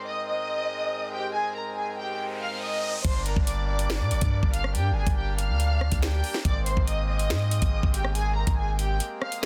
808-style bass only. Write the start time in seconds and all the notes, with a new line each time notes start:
3.05 G1
3.36 G1
4.00 A#2
4.11 G1
4.22 G2
4.43 G1
4.75 G2
4.91 G1
5.07 G1
5.49 D2
5.92 D2
6.45 G#1
6.77 G#1
7.30 G#2
7.62 G#1
7.83 G#1
8.47 G#1